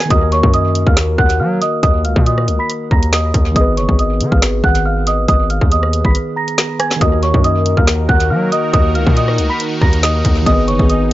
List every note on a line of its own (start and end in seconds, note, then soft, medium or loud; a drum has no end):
0.00 snare medium
0.06 3.49 D#3 medium
0.06 3.51 A#3 medium
0.10 0.42 D#2 loud
0.10 3.52 F#4 medium
0.10 0.28 D#5 medium
0.10 0.27 D#6 loud
0.10 kick loud
0.10 closed hi-hat medium
0.15 3.54 A#4 medium
0.32 0.49 C#5 medium
0.32 0.49 C#6 medium
0.32 closed hi-hat medium
0.43 0.85 F#2 loud
0.43 kick loud
0.54 0.85 D#5 medium
0.54 0.85 D#6 loud
0.54 closed hi-hat medium
0.75 closed hi-hat medium
0.87 1.17 D#2 loud
0.87 0.95 F5 medium
0.87 0.95 F6 medium
0.87 kick loud
0.97 finger snap medium
0.97 snare loud
0.97 closed hi-hat medium
1.18 1.41 D#2 loud
1.18 1.35 F#5 medium
1.18 1.35 F#6 medium
1.18 kick loud
1.30 closed hi-hat medium
1.40 1.60 F#3 loud
1.40 1.57 F5 medium
1.40 1.57 F6 medium
1.61 1.79 D#5 medium
1.61 1.78 D#6 medium
1.61 closed hi-hat medium
1.83 2.06 D#2 loud
1.83 2.00 D#5 medium
1.83 2.00 D#6 loud
1.83 kick loud
1.83 closed hi-hat medium
2.04 2.16 C#2 medium
2.04 2.22 F5 medium
2.04 2.21 F6 medium
2.04 closed hi-hat medium
2.16 2.49 A#2 loud
2.16 kick loud
2.26 2.58 D#5 medium
2.26 2.58 D#6 medium
2.26 closed hi-hat medium
2.38 cross-stick medium
2.48 2.59 C#2 loud
2.48 closed hi-hat medium
2.59 2.67 B5 medium
2.59 2.68 B6 medium
2.70 closed hi-hat medium
2.91 3.33 D#2 loud
2.91 3.08 A#5 medium
2.91 3.08 A#6 medium
2.91 kick loud
3.03 closed hi-hat medium
3.13 3.54 D#5 medium
3.13 3.53 D#6 medium
3.13 finger snap medium
3.13 snare loud
3.34 3.55 D#2 loud
3.34 kick loud
3.34 closed hi-hat medium
3.51 6.95 D#3 medium
3.51 6.96 B3 medium
3.56 3.79 G#1 loud
3.56 6.98 G#4 medium
3.56 3.73 D#5 medium
3.56 3.73 D#6 loud
3.56 kick loud
3.56 closed hi-hat medium
3.61 7.00 B4 medium
3.77 3.88 F#1 loud
3.77 3.94 C#5 medium
3.77 3.94 C#6 medium
3.77 closed hi-hat medium
3.89 4.22 G#1 loud
3.89 kick loud
3.99 4.31 D#5 medium
3.99 4.30 D#6 medium
3.99 closed hi-hat medium
4.21 4.31 D#3 loud
4.21 closed hi-hat medium
4.32 4.62 G#1 loud
4.32 4.40 F5 medium
4.32 4.40 F6 medium
4.32 kick loud
4.42 finger snap medium
4.42 snare loud
4.42 closed hi-hat medium
4.64 5.26 G#1 loud
4.64 4.81 F#5 medium
4.64 4.81 F#6 medium
4.64 kick loud
4.75 closed hi-hat medium
4.86 5.03 F5 medium
4.86 5.02 F6 medium
5.07 5.24 D#5 medium
5.07 5.24 D#6 medium
5.07 closed hi-hat medium
5.28 5.60 G#1 loud
5.28 5.46 D#5 medium
5.28 5.45 D#6 loud
5.28 kick loud
5.28 closed hi-hat medium
5.50 5.67 F5 medium
5.50 5.67 F6 medium
5.50 closed hi-hat medium
5.61 6.03 D#2 loud
5.61 kick loud
5.72 6.03 D#5 medium
5.72 6.03 D#6 medium
5.72 closed hi-hat medium
5.83 cross-stick medium
5.93 closed hi-hat medium
6.05 6.15 G#1 loud
6.05 6.13 B5 medium
6.05 6.13 B6 medium
6.05 kick loud
6.15 closed hi-hat medium
6.36 6.77 A#5 medium
6.36 6.77 A#6 medium
6.48 closed hi-hat medium
6.58 finger snap medium
6.58 snare loud
6.79 6.96 G#5 medium
6.79 6.97 G#6 medium
6.79 cross-stick loud
6.79 closed hi-hat medium
6.91 snare medium
6.96 10.40 D#3 medium
6.96 10.42 A#3 medium
7.01 7.33 D#2 loud
7.01 10.43 D#3 medium
7.01 11.13 D#4 medium
7.01 10.43 F#4 medium
7.01 10.43 A#4 medium
7.01 7.18 D#5 medium
7.01 7.18 D#6 loud
7.01 kick loud
7.01 closed hi-hat medium
7.06 10.45 A#4 medium
7.23 7.40 C#5 medium
7.23 7.39 C#6 medium
7.23 closed hi-hat medium
7.34 7.76 F#2 loud
7.34 kick loud
7.44 7.76 D#5 medium
7.44 7.75 D#6 loud
7.44 closed hi-hat medium
7.66 closed hi-hat medium
7.77 8.08 D#2 loud
7.77 7.86 F5 medium
7.77 7.85 F6 medium
7.77 kick loud
7.87 finger snap medium
7.87 snare loud
7.87 closed hi-hat medium
8.09 8.32 D#2 loud
8.09 8.26 F#5 medium
8.09 8.26 F#6 medium
8.09 kick loud
8.20 closed hi-hat medium
8.30 8.51 F#3 loud
8.30 8.48 F5 medium
8.30 8.47 F6 medium
8.52 8.69 D#5 medium
8.52 8.69 D#6 medium
8.52 closed hi-hat medium
8.73 8.97 D#2 loud
8.73 8.91 D#5 medium
8.73 8.90 D#6 loud
8.73 kick loud
8.73 closed hi-hat medium
8.95 9.06 C#2 loud
8.95 9.12 F5 medium
8.95 9.12 F6 medium
8.95 closed hi-hat medium
9.07 9.40 A#2 loud
9.07 kick loud
9.17 9.48 D#5 medium
9.17 9.48 D#6 medium
9.17 closed hi-hat medium
9.28 cross-stick medium
9.38 9.49 C#2 loud
9.38 closed hi-hat medium
9.50 9.58 B5 medium
9.50 9.58 B6 medium
9.60 closed hi-hat medium
9.81 10.23 D#2 loud
9.81 9.98 A#5 medium
9.81 9.99 A#6 medium
9.81 kick loud
9.93 closed hi-hat medium
10.03 10.44 D#5 medium
10.03 10.44 D#6 medium
10.03 finger snap medium
10.03 snare loud
10.25 10.46 D#2 loud
10.25 kick loud
10.25 closed hi-hat medium
10.42 11.13 D#3 medium
10.42 11.13 B3 medium
10.46 10.69 G#1 loud
10.46 11.13 B3 medium
10.46 11.13 G#4 medium
10.46 10.64 D#5 medium
10.46 10.63 D#6 loud
10.46 kick loud
10.46 closed hi-hat medium
10.51 11.13 B4 medium
10.68 10.79 F#1 medium
10.68 10.85 C#5 medium
10.68 10.85 C#6 medium
10.68 closed hi-hat medium
10.79 11.13 G#1 loud
10.79 kick loud
10.90 11.13 D#5 medium
10.90 11.13 D#6 medium
10.90 closed hi-hat medium